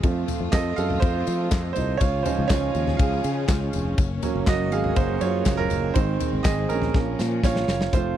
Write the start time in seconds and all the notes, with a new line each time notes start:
0.03 F2 F3 A3 C4 F4, kick, ride, tambourine
0.28 floor tom, ride, tambourine
0.41 F2
0.52 F2 A4 D#5, kick, snare, clap, ride, tambourine
0.76 F#2 A4 F5, ride, tambourine
0.90 floor tom
1.00 F2 F4 C5, kick, ride, tambourine
1.27 F3, ride, tambourine
1.51 F2, kick, snare, clap, ride, tambourine
1.73 C2 D#4 C5, floor tom, ride, tambourine
1.97 C#2 C#3 C#4 F4 G#4 C#5, kick, ride, tambourine
2.23 F3 G#3 C#4 D#4 C5, floor tom, ride, tambourine
2.39 C#2
2.48 C#2 F4 C#5, kick, snare, clap, ride, tambourine
2.75 D#2, ride, tambourine
2.87 snare, floor tom
2.97 C#2 G#4 F5, kick, ride, tambourine
3.24 C#3, ride, tambourine
3.48 C#2, kick, snare, clap, ride, tambourine
3.73 F1, floor tom, ride, tambourine
3.98 F#1 F#3 A#3, kick, ride, tambourine
4.22 F#3 A#3 C#4, floor tom, ride, tambourine
4.35 F#1
4.47 F#1 F#4 D#5, kick, snare, clap, ride, tambourine
4.72 G#1 G#4 F5, ride, tambourine
4.84 floor tom
4.96 F#1 F#3 A#3 C#4 F#4 C5, kick, ride, tambourine
5.21 F#2 F4 C#5, ride, tambourine
5.45 F#1, kick, snare, clap, ride, tambourine
5.57 C#4 A#4, floor tom
5.70 F#1, floor tom, ride, tambourine
5.94 G#1 D#3 G#3 C4 D#4 C5, kick, ride, tambourine
6.20 floor tom, ride, tambourine
6.33 G#1
6.43 G#1 G#4 D#5, kick, snare, clap, ride, tambourine
6.69 A#1 C#4 A#4, ride, tambourine
6.82 snare, floor tom
6.94 A#1 F3 A#3 C#4, kick, snare
7.19 A#2, snare, tambourine
7.43 A#1 F4 C#5, kick, snare, tambourine
7.56 snare
7.68 F#1, snare, tambourine
7.81 snare
7.92 F1 F3 A3 C4 F4 C5, kick, closed hi-hat, tambourine